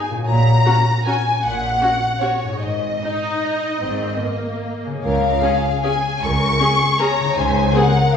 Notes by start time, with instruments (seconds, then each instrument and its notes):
Already playing: harp G#2 G#3 D#4 D#5
0.10 harp A#2
0.15 harp C#4
0.19 harp F#4
0.24 cello section A#2, harp C#5, violin section A#5
0.28 double bass section A#1, violin section A#5
0.66 viola section C#4 F#4
1.06 viola section C#4 F#4, violin section G#5
1.43 double bass section A#1, cello section A#2, violin section F#5
1.81 viola section C#4 F#4
2.21 viola section C#4 F#4, violin section C#5
2.44 harp G#2
2.48 harp D#4
2.52 harp G#4
2.57 harp C5, violin section D#5
2.61 double bass section G#1, cello section G#2
3.02 viola section D#4
3.83 double bass section G#1, cello section G#2, viola section C4
4.23 viola section A#3
4.86 harp C#3
4.90 harp C#4
4.95 harp G#4
4.99 harp C#5
5.03 cello section C#2, double bass section C#2, violin section A#4 F5
5.42 viola section C#4 G#4, violin section G#4
5.83 viola section C#4 G#4, violin section G#5
6.22 cello section C#2, double bass section C#2, violin section A#4 C#6
6.60 viola section C#4 G#4, violin section G#4
7.00 viola section C#4 G#4, violin section C#5 A#5
7.20 harp C#3
7.24 harp D#4
7.29 harp G#4
7.33 cello section C#2, double bass section C#2, harp C5, violin section G#5
7.38 violin section C5
7.75 viola section C4 G#4, violin section A#4 F#5